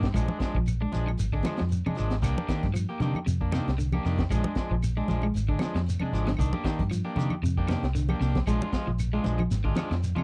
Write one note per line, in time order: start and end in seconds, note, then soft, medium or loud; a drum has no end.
0.00 0.11 G2 medium
0.00 kick medium
0.00 snare medium
0.00 closed hi-hat soft
0.14 0.26 A#1 medium
0.14 0.29 F3 medium
0.14 0.31 G#3 medium
0.14 0.28 G#3 medium
0.14 0.27 D4 medium
0.14 kick medium
0.14 closed hi-hat medium
0.14 claves medium
0.14 shekere medium
0.28 0.38 G#3 soft
0.28 0.39 D4 medium
0.28 high conga medium
0.39 0.57 F3 medium
0.39 0.57 G#3 medium
0.39 0.58 D4 medium
0.39 muted fingered electric bass stroke soft
0.39 kick medium
0.39 snare medium
0.39 closed hi-hat soft
0.39 shekere soft
0.55 0.85 A#1 medium
0.55 0.73 F3 medium
0.55 kick medium
0.66 closed hi-hat medium
0.66 claves medium
0.66 shekere medium
0.81 0.99 G#3 medium
0.81 0.92 D4 medium
0.81 muted clean electric guitar stroke soft
0.92 1.15 A#1 medium
0.92 1.09 F3 medium
0.92 1.10 G#3 medium
0.92 1.10 D4 medium
0.92 closed hi-hat soft
0.92 high conga medium
0.92 shekere soft
1.07 1.24 F3 medium
1.07 claves medium
1.18 1.40 G#1 medium
1.18 closed hi-hat medium
1.18 shekere medium
1.32 1.50 D3 medium
1.32 1.44 G#3 soft
1.32 1.44 D4 medium
1.32 kick medium
1.43 1.61 F3 medium
1.43 1.62 G#3 medium
1.43 1.62 D4 medium
1.43 snare medium
1.43 closed hi-hat soft
1.43 high conga medium
1.43 claves medium
1.43 shekere soft
1.57 1.76 F3 medium
1.57 snare medium
1.57 closed hi-hat soft
1.61 1.81 F2 medium
1.69 closed hi-hat medium
1.69 shekere medium
1.86 2.03 C3 medium
1.86 1.97 G#3 soft
1.86 1.97 D4 medium
1.86 muted fingered electric bass stroke soft
1.86 high conga medium
1.86 claves medium
1.95 2.14 F3 medium
1.95 2.14 G#3 medium
1.95 2.14 D4 medium
1.95 closed hi-hat soft
1.95 shekere soft
1.99 2.19 G#1 medium
2.10 snare medium
2.10 closed hi-hat medium
2.22 2.34 C2 medium
2.22 2.37 A#3 medium
2.22 2.36 D4 medium
2.22 2.36 G4 medium
2.22 muted clean electric guitar stroke medium
2.22 kick medium
2.22 snare soft
2.22 closed hi-hat medium
2.22 claves medium
2.22 shekere medium
2.37 2.47 A#3 soft
2.37 2.48 D4 soft
2.37 2.48 G4 soft
2.37 high conga medium
2.48 2.65 D#3 medium
2.48 2.66 D#3 medium
2.48 2.66 A#3 medium
2.48 2.66 D4 medium
2.48 2.66 G4 medium
2.48 muted fingered electric bass stroke soft
2.48 kick medium
2.48 snare medium
2.48 closed hi-hat soft
2.48 shekere soft
2.63 2.84 G2 medium
2.63 kick medium
2.63 snare soft
2.63 closed hi-hat soft
2.63 high conga medium
2.74 2.91 F3 medium
2.74 closed hi-hat medium
2.74 claves medium
2.74 shekere medium
2.89 3.00 A#3 soft
2.89 3.01 G4 medium
3.00 3.12 C3 medium
3.00 3.17 D3 medium
3.00 3.18 D#3 medium
3.00 3.18 A#3 medium
3.00 3.18 D4 medium
3.00 3.18 G4 medium
3.00 closed hi-hat soft
3.00 high conga medium
3.00 shekere soft
3.15 high conga medium
3.15 claves medium
3.26 3.59 F2 medium
3.26 3.43 C3 medium
3.26 closed hi-hat medium
3.26 shekere medium
3.41 3.52 A#3 soft
3.41 3.52 D4 soft
3.41 kick medium
3.52 3.70 C3 medium
3.52 3.70 D#3 medium
3.52 3.70 A#3 medium
3.52 3.70 D4 medium
3.52 3.70 G4 medium
3.52 snare medium
3.52 closed hi-hat soft
3.52 high conga medium
3.52 claves medium
3.52 shekere soft
3.68 3.97 C2 medium
3.68 snare medium
3.68 closed hi-hat soft
3.78 3.95 D3 medium
3.78 closed hi-hat soft
3.78 shekere medium
3.92 4.05 A#3 soft
3.92 4.05 D4 soft
3.92 4.05 G4 medium
3.92 high conga medium
3.92 claves medium
4.05 4.26 F2 medium
4.05 4.22 C3 medium
4.05 4.22 D#3 medium
4.05 4.22 A#3 medium
4.05 4.23 D4 medium
4.05 4.23 G4 medium
4.05 open hi-hat medium
4.05 shekere soft
4.18 kick medium
4.18 snare medium
4.18 closed hi-hat soft
4.18 high conga medium
4.30 4.42 A#1 medium
4.30 4.45 F3 medium
4.30 4.48 G#3 medium
4.30 4.45 G#3 medium
4.30 4.44 D4 medium
4.30 kick medium
4.30 closed hi-hat medium
4.30 claves medium
4.30 shekere medium
4.44 4.56 G#3 soft
4.44 4.57 D4 soft
4.44 high conga medium
4.55 4.74 F3 medium
4.55 4.74 G#3 medium
4.55 4.74 D4 medium
4.55 muted fingered electric bass stroke soft
4.55 kick medium
4.55 snare medium
4.55 closed hi-hat medium
4.55 shekere soft
4.70 5.01 A#1 medium
4.70 4.88 F3 medium
4.70 kick medium
4.82 closed hi-hat medium
4.82 claves medium
4.82 shekere medium
4.97 5.14 G#3 medium
4.97 5.08 G#3 soft
4.97 5.08 D4 medium
5.08 5.30 A#1 medium
5.08 5.26 F3 medium
5.08 5.26 G#3 medium
5.08 5.26 D4 medium
5.08 closed hi-hat soft
5.08 high conga medium
5.08 shekere soft
5.22 5.40 G#3 medium
5.22 high conga medium
5.22 claves medium
5.34 5.56 G#1 medium
5.34 closed hi-hat medium
5.34 shekere medium
5.48 5.66 D3 medium
5.48 5.60 G#3 soft
5.48 5.61 D4 medium
5.48 kick medium
5.59 5.78 F3 medium
5.59 5.78 G#3 medium
5.59 5.78 D4 medium
5.59 snare medium
5.59 closed hi-hat medium
5.59 high conga medium
5.59 claves medium
5.59 shekere soft
5.75 5.96 F2 medium
5.75 5.93 F3 medium
5.75 snare medium
5.75 closed hi-hat soft
5.86 closed hi-hat medium
5.86 shekere medium
5.99 6.19 C3 medium
5.99 6.12 G#3 soft
5.99 6.13 D4 medium
5.99 muted fingered electric bass stroke soft
5.99 high conga medium
5.99 claves medium
6.13 6.33 G#1 medium
6.13 6.30 F3 medium
6.13 6.30 G#3 medium
6.13 6.30 D4 medium
6.13 closed hi-hat soft
6.13 shekere soft
6.27 6.44 D3 medium
6.27 snare medium
6.27 closed hi-hat medium
6.27 high conga medium
6.37 6.51 C2 medium
6.37 6.53 D#3 medium
6.37 6.53 D4 medium
6.37 muted clean electric guitar stroke medium
6.37 kick medium
6.37 closed hi-hat medium
6.37 claves medium
6.37 shekere medium
6.53 6.63 A#3 soft
6.53 6.64 D4 medium
6.53 6.64 G4 medium
6.53 high conga medium
6.64 6.81 D#3 medium
6.64 6.82 D#3 medium
6.64 6.82 A#3 medium
6.64 6.82 D4 medium
6.64 6.82 G4 medium
6.64 muted fingered electric bass stroke soft
6.64 kick medium
6.64 snare medium
6.64 closed hi-hat medium
6.64 shekere soft
6.79 7.00 G2 medium
6.79 kick medium
6.79 closed hi-hat soft
6.79 high conga medium
6.90 7.08 F3 medium
6.90 closed hi-hat medium
6.90 claves medium
6.90 shekere medium
7.05 7.15 A#3 soft
7.05 7.16 D4 medium
7.05 7.17 G4 medium
7.16 7.28 C3 medium
7.16 7.34 D3 medium
7.16 7.34 D#3 medium
7.16 7.34 A#3 medium
7.16 7.34 D4 medium
7.16 7.34 G4 medium
7.16 closed hi-hat soft
7.16 high conga medium
7.16 shekere soft
7.30 high conga medium
7.30 claves medium
7.42 7.75 F2 medium
7.42 7.60 C3 medium
7.42 closed hi-hat medium
7.42 shekere medium
7.57 7.67 A#3 soft
7.57 7.67 D4 soft
7.57 7.68 G4 medium
7.57 kick medium
7.67 7.86 C3 medium
7.67 7.85 D#3 medium
7.67 7.85 A#3 medium
7.67 7.86 D4 medium
7.67 7.86 G4 medium
7.67 snare medium
7.67 closed hi-hat soft
7.67 high conga medium
7.67 claves medium
7.67 shekere soft
7.83 8.13 C2 medium
7.83 snare medium
7.83 closed hi-hat soft
7.95 8.12 D3 medium
7.95 snare soft
7.95 closed hi-hat medium
7.95 shekere medium
8.09 8.21 A#3 soft
8.09 8.21 D4 soft
8.09 8.21 G4 medium
8.09 high conga medium
8.09 claves medium
8.21 8.41 C2 medium
8.21 8.38 C3 medium
8.21 8.38 A#3 medium
8.21 8.39 D4 medium
8.21 8.39 G4 medium
8.21 muted clean electric guitar stroke medium
8.21 open hi-hat medium
8.21 shekere soft
8.35 kick medium
8.35 snare medium
8.35 closed hi-hat soft
8.35 high conga medium
8.47 8.59 A#1 medium
8.47 8.62 F3 medium
8.47 8.64 G#3 medium
8.47 8.62 G#3 medium
8.47 8.61 D4 medium
8.47 8.61 F4 medium
8.47 kick medium
8.47 closed hi-hat medium
8.47 claves medium
8.47 shekere medium
8.62 8.71 G#3 soft
8.62 8.74 D4 medium
8.62 8.72 F4 medium
8.62 high conga medium
8.72 8.90 F3 soft
8.72 8.89 G#3 medium
8.72 8.90 F4 medium
8.72 muted fingered electric bass stroke soft
8.72 kick medium
8.72 snare medium
8.72 closed hi-hat soft
8.72 shekere soft
8.87 9.18 A#1 medium
8.87 9.04 F3 medium
8.87 kick medium
8.98 closed hi-hat medium
8.98 claves medium
8.98 shekere medium
9.13 9.30 G#3 medium
9.13 9.23 G#3 soft
9.13 9.23 D4 soft
9.13 9.25 F4 medium
9.23 9.46 A#1 medium
9.23 9.41 F3 medium
9.23 9.41 G#3 medium
9.23 9.41 D4 medium
9.23 closed hi-hat soft
9.23 high conga medium
9.23 shekere soft
9.39 9.56 F3 medium
9.39 high conga medium
9.39 claves medium
9.50 9.72 G#1 medium
9.50 snare soft
9.50 closed hi-hat medium
9.50 shekere medium
9.64 9.81 D3 medium
9.64 9.74 G#3 soft
9.64 9.75 D4 soft
9.64 9.75 F4 medium
9.64 kick medium
9.75 9.93 F3 medium
9.75 9.93 G#3 medium
9.75 9.94 D4 medium
9.75 9.94 F4 medium
9.75 snare medium
9.75 closed hi-hat medium
9.75 high conga medium
9.75 claves medium
9.75 shekere soft
9.91 10.12 F2 medium
9.91 10.08 F3 medium
9.91 snare medium
9.91 closed hi-hat soft
10.02 closed hi-hat medium
10.02 shekere medium
10.15 10.23 C3 medium
10.15 10.23 G#3 soft
10.15 10.23 D4 soft
10.15 10.23 F4 medium
10.15 muted fingered electric bass stroke soft
10.15 high conga medium
10.15 claves medium